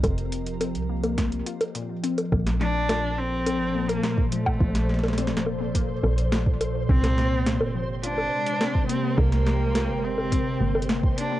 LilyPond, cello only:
\new Staff \with { instrumentName = "Cello" } { \time 4/4 \key bes \major \tempo 4 = 105 r1 | r8 d'4 c'4~ c'16 bes8. a8~ | a4. r2 r8 | c'4. r8 d'4. c'8 |
bes4. c'4. r8 d'8 | }